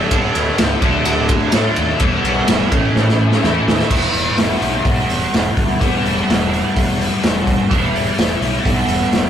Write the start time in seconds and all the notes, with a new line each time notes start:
Already playing: A3 D4
0.11 G1 G2 D3 G3 B3 D4, kick, ride
0.34 D2, ride
0.58 C#2, snare, ride
0.81 D2 D3 F#3 A3 D4, kick, ride
1.05 D2, ride
1.29 kick, ride
1.52 A2 D3 F#3 A3 D4, snare, ride
1.76 D#2, ride
2.00 E1 E3 G3 B3 E4, kick, ride
2.24 B1, ride
2.48 E1, snare, ride
2.71 A1 A2 E3 A3 C#4 E4, kick, ride
2.95 A1, snare
3.09 snare
3.32 snare
3.42 E2 A2 E3 A3 C#4 E4, snare
3.67 D#2, snare
3.79 snare
3.90 E1 E3 G3 B3 E4, kick, crash
4.13 E1, open hi-hat
4.37 E1, snare, open hi-hat
4.62 B1, open hi-hat
4.85 B1, kick, open hi-hat
5.09 E1, open hi-hat
5.33 E1, snare, open hi-hat
5.57 D2, kick, open hi-hat
5.80 E1 E3 G3 B3 E4, kick, open hi-hat
6.05 E1, open hi-hat
6.30 E1, snare, open hi-hat
6.53 open hi-hat
6.76 E1, kick, open hi-hat
7.01 open hi-hat
7.23 E1, snare, open hi-hat
7.47 kick, open hi-hat
7.70 E1 E3 G3 B3 E4, kick, open hi-hat
7.93 E1, open hi-hat
8.18 E1, snare, open hi-hat
8.40 B1, open hi-hat
8.66 B1, kick, open hi-hat
8.87 E1, open hi-hat
9.11 E1, snare, open hi-hat